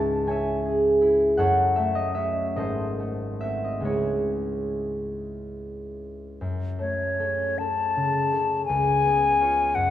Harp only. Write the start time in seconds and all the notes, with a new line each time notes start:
Already playing: C#2 G#3 E4 E5 G#5 A5 C#6
0.27 C#4 C#5 G#5
0.31 E5
0.65 G#4
1.02 E4
1.37 F#2 A4 C#5 F#5
1.76 A3 E5
1.95 D#5
2.15 C#4 F#4 E5
2.56 G#1 A4 C5 D#5
2.99 A3
3.41 C4 F#4 E5
3.64 D#5
3.80 C#2 G#3 C#4
3.85 E4 G#4 C#5
6.41 F#2
6.79 A3
7.19 C#4 A4
7.60 C#4 A4
7.96 C#3
8.32 C#4 A4
8.69 C#2
9.05 B3
9.41 F4 C#5
9.75 F#2